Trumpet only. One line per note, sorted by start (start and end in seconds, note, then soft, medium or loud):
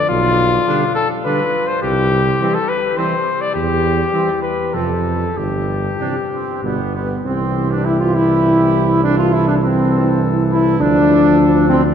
0.00 0.10 D4 medium
0.68 0.84 D4 medium
1.25 1.41 D4 medium
2.41 2.57 C4 medium
2.97 3.13 C4 medium
4.13 4.29 C4 soft
4.74 4.90 C4 soft
6.00 6.14 D4 medium
6.31 6.62 C4 soft
6.63 6.94 B3 soft
6.94 7.08 B3 soft
7.25 7.72 C4 medium
7.71 7.86 D4 soft
7.84 7.99 E4 medium
8.00 8.16 F4 medium
8.15 9.03 E4 medium
9.03 9.17 D4 medium
9.18 9.35 F4 medium
9.33 9.47 E4 medium
9.47 9.54 D4 medium
9.62 10.20 C4 medium
10.51 10.82 E4 medium
10.81 11.69 D4 medium
11.69 11.83 C4 medium